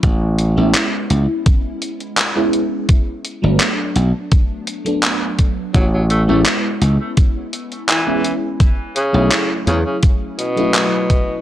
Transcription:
<<
  \new Staff \with { instrumentName = "FM electric piano" } { \time 4/4 \key a \major \tempo 4 = 84 r8. <gis b cis' e'>2~ <gis b cis' e'>8 <gis b cis' e'>8. | r8. <fis a b d'>2 <fis a b d'>4~ <fis a b d'>16 | r8. <gis b cis' e'>2~ <gis b cis' e'>8 <gis b cis' e'>8. | r8. <fis a cis' e'>2 <fis a cis' e'>4~ <fis a cis' e'>16 | }
  \new Staff \with { instrumentName = "Tenor saxophone" } { \clef bass \time 4/4 \key a \major r1 | r1 | fis16 fis16 a16 a16 r2 e8 r8 | r8 cis8. r16 cis16 cis16 r8 b,4. | }
  \new Staff \with { instrumentName = "Slap bass" } { \clef bass \time 4/4 \key a \major a,,8. a,,16 r8 cis,16 r2 r16 | r8. g,,16 r8 b,,16 r2 r16 | a,,8. a,,16 r8 cis,16 r2 r16 | r8. b,,16 r8 e,16 r2 r16 | }
  \new DrumStaff \with { instrumentName = "Drums" } \drummode { \time 4/4 <hh bd>8 hh8 <hc hh>8 hh8 <hh bd>8 hh16 hh16 <hc hh>8 hh8 | <hh bd>8 hh8 <hc hh>8 hh8 <hh bd>8 hh16 hh16 <hc hh>8 <hh bd>8 | <hh bd>8 hh8 <hc hh>8 hh8 <hh bd>8 hh16 hh16 <hc hh>8 hh8 | <hh bd>8 hh8 <hc hh>8 hh8 <hh bd>8 hh16 hh16 <hc hh>8 <hh bd>8 | }
>>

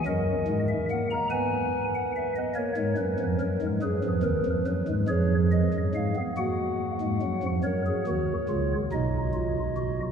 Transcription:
<<
  \new Staff \with { instrumentName = "Pipe organ" } { \time 6/8 \key fis \mixolydian \tempo 4. = 47 << { dis''8. e''16 fis''16 ais''16 gis''8. fis''16 e''16 dis''16 | cis''16 cis''16 b'8 ais'8 gis'8 ais'8 b'8 | cis''8 dis''8 eis''8 fis''4. | cis''4. dis''4. | } \\ { ais'4. b'4. | ais'4. b'4. | gis'4. fis'4. | ais'16 gis'16 fis'8 eis'8 dis'8 eis'8 fis'8 | } >> }
  \new Staff \with { instrumentName = "Pipe organ" } { \clef bass \time 6/8 \key fis \mixolydian <fis, fis>8 <gis, gis>8 ais8 b4. | ais16 <gis, gis>16 <fis, fis>16 <eis, eis>16 <fis, fis>16 <gis, gis>16 <fis, fis>16 <eis, eis>16 <dis, dis>16 <eis, eis>16 <fis, fis>16 <gis, gis>16 | <eis, eis>8. <fis, fis>16 <gis, gis>16 b16 ais8. <gis, gis>16 <fis, fis>16 <eis, eis>16 | <fis, fis>8 <dis, dis>8 <cis, cis>8 <b,, b,>4. | }
>>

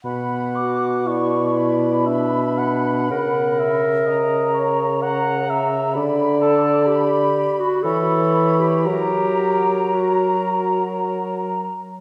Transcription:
<<
  \new Staff \with { instrumentName = "Flute section" } { \time 3/4 \key b \minor \tempo 4 = 60 b''8 d'''8 cis'''8 b''4.~ | b''4 ais''4 ais''4 | b''8 a''8 b''4 b''4 | ais''2~ ais''8 r8 | }
  \new Staff \with { instrumentName = "Cor anglais" } { \time 3/4 \key b \minor fis''4 d''4 e''8 fis''8 | fis''8 e''8 dis''8 cis''8 fis''8 e''8 | d''4. r8 cis''4 | ais'2~ ais'8 r8 | }
  \new Staff \with { instrumentName = "Clarinet" } { \time 3/4 \key b \minor r8 fis'8 e'4 d'4 | ais'2~ ais'8 r8 | r8 a'8 g'8. fis'16 a'8. g'16 | g'4 fis'4 r4 | }
  \new Staff \with { instrumentName = "Bassoon" } { \clef bass \time 3/4 \key b \minor b,2. | cis2. | d4. r8 e4 | fis2~ fis8 r8 | }
>>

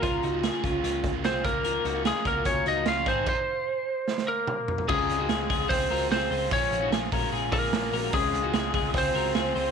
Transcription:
<<
  \new Staff \with { instrumentName = "Lead electric guitar" } { \time 4/4 \key des \major \tempo 4 = 148 f'2. c''8 bes'8~ | bes'4 aes'8 bes'8 des''8 ees''8 f''8 c''8 | c''2~ c''8 bes'4. | aes'2 c''4 c''4 |
des''4 r4. bes'4. | aes'2 c''2 | }
  \new Staff \with { instrumentName = "Clean electric guitar" } { \time 4/4 \key des \major <f' bes'>8 <ees' ges'>8 <f' aes'>8 <des' f'>8 <des' f'>4 <f' aes'>8 <f' bes'>8 | <f' bes'>8 <ees' ges'>8 <f' aes'>8 <ges' bes'>4 <ees' ges'>8 <des' f'>8 <ees' aes'>8 | r1 | <des' f'>8. <ees' ges'>16 <f' aes'>8 <f' aes'>4 <ges' bes'>8 <f' aes'>8 <aes' c''>8 |
<des' f'>8. <ees' ges'>16 <f' aes'>8 <ges' bes'>8 <f' aes'>8 <f' aes'>4 <ges' bes'>8 | <des' f'>8. <ees' ges'>16 <f' aes'>8 <f' aes'>4 <ges' bes'>8 <f' aes'>8 <aes' c''>8 | }
  \new Staff \with { instrumentName = "Trumpet" } { \time 4/4 \key des \major r2. c'8 bes8~ | bes4 aes8 bes8 des'8 ees'8 f'8 c'8 | r2 r8 bes4. | aes2 c'4 c'4 |
des'4 r4. bes4. | aes2 c'2 | }
  \new Staff \with { instrumentName = "Overdriven electric guitar" } { \time 4/4 \key des \major <des aes bes f'>8. <des aes bes f'>8 <des aes bes f'>8 <aes bes f'>4 <aes bes f'>8 <aes bes f'>16 <des f bes f'>8~ | <des f bes f'>8. <des f bes f'>8 <des f bes f'>8 <bes f'>4 <f bes f'>8 <f bes f'>16 <aes, ees aes c' ees'>8 | r1 | <des aes c' f'>8. <des aes c' f'>8. <des aes c' f'>4 <des aes c' f'>8. <des aes c' f'>8. |
<f aes des' f'>8. <bes, f aes des' f'>8. <f aes des' f'>4 <bes, f aes des' f'>8. <bes, f aes des' f'>8. | <des aes c' f'>8. <des aes c' f'>8. <des aes c' f'>4 <des aes c' f'>8. <des aes c' f'>8. | }
  \new Staff \with { instrumentName = "Picked electric bass" } { \clef bass \time 4/4 \key des \major des,8 des,8. r16 des,8 des,8 des,8 c,8 des,8~ | des,8 des,8. r16 des,8 des,8 des,8 des,8 aes,,8 | r1 | des,8 des,8 des,8 des,8 des,8 des,8 des,8 des,8 |
bes,,8 bes,,8 bes,,8 bes,,8 bes,,8 bes,,8 bes,,8 bes,,8 | des,8 des,8 des,8 des,8 des,8 des,8 des,8 des,8 | }
  \new DrumStaff \with { instrumentName = "Drums" } \drummode { \time 4/4 <hh bd>8 hh8 <hh sn>8 <hh bd>8 hh8 <hh bd sn>8 <hh sn>8 <hh bd>8 | hh8 hh8 <hh sn>8 <hh bd>8 <hh bd>8 hh8 <hh sn>8 <hh bd>8 | <cymc bd>4 r4 sn16 sn8. toml8 tomfh16 tomfh16 | <cymc bd>8 <hho hhp>8 <hho hhp sn>8 <hho hhp bd>8 <hho hhp bd>8 <hho hhp>8 <hho hhp sn>8 <hho hhp>8 |
<hho hhp bd>8 <hho hhp>8 <hho hhp sn>8 <hho hhp bd>8 <hho hhp>8 <hho hhp bd>8 <hho hhp sn>8 <hho hhp>8 | <hho hhp bd>8 <hho hhp>8 <hho hhp sn>8 <hho hhp bd>8 <hho hhp bd>8 <hho hhp>8 <hho hhp sn>8 <hho hhp>8 | }
>>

